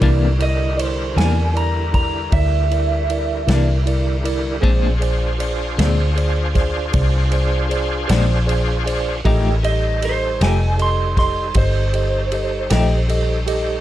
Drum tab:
RD |xxxxxxxxxxxx|xxxxxxxxxxxx|xxxxxxxxxxxx|
SD |---o-----o--|---o-o---o--|---o-o---o--|
BD |o----oo-----|o----oo-----|o----oo-----|